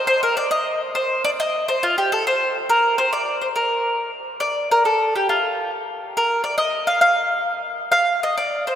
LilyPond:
\new Staff \with { instrumentName = "Mandolin" } { \time 6/8 \key c \dorian \tempo 4. = 137 c''8 bes'8 d''8 ees''4 r8 | c''4 d''8 ees''4 c''8 | f'8 g'8 a'8 c''4 r8 | bes'4 c''8 d''4 c''8 |
bes'2 r4 | \key f \mixolydian d''4 bes'8 a'4 g'8 | f'4. r4. | bes'4 d''8 ees''4 f''8 |
f''4. r4. | f''4 ees''8 d''4 c''8 | }